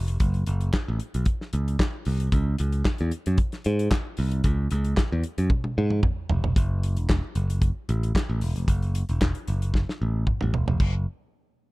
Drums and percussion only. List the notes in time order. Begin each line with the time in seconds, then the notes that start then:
0.08 closed hi-hat
0.20 kick, closed hi-hat
0.34 closed hi-hat
0.47 closed hi-hat
0.61 closed hi-hat
0.73 kick, snare, clap
1.00 closed hi-hat
1.14 closed hi-hat
1.26 kick, closed hi-hat
1.41 snare
1.53 closed hi-hat
1.68 closed hi-hat
1.79 kick, snare, clap
2.05 open hi-hat
2.20 closed hi-hat
2.32 kick, closed hi-hat
2.59 closed hi-hat
2.72 closed hi-hat
2.85 kick, snare, clap
2.98 closed hi-hat
3.11 closed hi-hat
3.26 closed hi-hat
3.38 kick, closed hi-hat
3.52 snare, closed hi-hat
3.64 closed hi-hat
3.79 closed hi-hat
3.91 kick, snare, clap
4.17 open hi-hat
4.31 closed hi-hat
4.44 kick, closed hi-hat
4.71 closed hi-hat
4.85 closed hi-hat
4.97 kick, snare, clap
5.24 closed hi-hat
5.38 closed hi-hat
5.50 kick, high tom
5.64 high tom
5.90 mid tom
6.03 kick, mid tom
6.29 floor tom
6.44 floor tom
6.56 kick, closed hi-hat
6.83 closed hi-hat
6.97 closed hi-hat
7.09 kick, snare, clap
7.35 closed hi-hat
7.50 closed hi-hat
7.62 kick, closed hi-hat
7.89 closed hi-hat
8.03 closed hi-hat
8.15 kick, snare, clap
8.41 open hi-hat
8.56 closed hi-hat
8.68 kick, closed hi-hat
8.82 closed hi-hat
8.95 closed hi-hat
9.09 closed hi-hat
9.21 kick, snare, clap
9.35 closed hi-hat
9.48 closed hi-hat
9.62 closed hi-hat
9.74 kick, snare
9.89 snare
10.27 kick, mid tom
10.41 mid tom
10.54 floor tom
10.68 floor tom
10.80 kick, crash